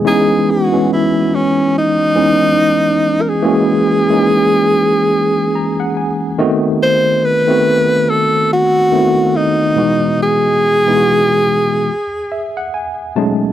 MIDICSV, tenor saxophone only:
0, 0, Header, 1, 2, 480
1, 0, Start_track
1, 0, Tempo, 845070
1, 30, Time_signature, 4, 2, 24, 8
1, 7683, End_track
2, 0, Start_track
2, 0, Title_t, "Tenor saxophone"
2, 0, Program_c, 0, 66
2, 42, Note_on_c, 0, 68, 105
2, 286, Note_on_c, 0, 66, 96
2, 295, Note_off_c, 0, 68, 0
2, 518, Note_off_c, 0, 66, 0
2, 528, Note_on_c, 0, 64, 92
2, 766, Note_on_c, 0, 61, 94
2, 774, Note_off_c, 0, 64, 0
2, 998, Note_off_c, 0, 61, 0
2, 1012, Note_on_c, 0, 63, 120
2, 1825, Note_on_c, 0, 70, 58
2, 1833, Note_off_c, 0, 63, 0
2, 1867, Note_on_c, 0, 68, 103
2, 1875, Note_off_c, 0, 70, 0
2, 3638, Note_off_c, 0, 68, 0
2, 3879, Note_on_c, 0, 72, 122
2, 4116, Note_on_c, 0, 71, 108
2, 4124, Note_off_c, 0, 72, 0
2, 4599, Note_on_c, 0, 69, 101
2, 4608, Note_off_c, 0, 71, 0
2, 4835, Note_off_c, 0, 69, 0
2, 4846, Note_on_c, 0, 66, 111
2, 5318, Note_on_c, 0, 63, 91
2, 5327, Note_off_c, 0, 66, 0
2, 5794, Note_off_c, 0, 63, 0
2, 5806, Note_on_c, 0, 68, 113
2, 7215, Note_off_c, 0, 68, 0
2, 7683, End_track
0, 0, End_of_file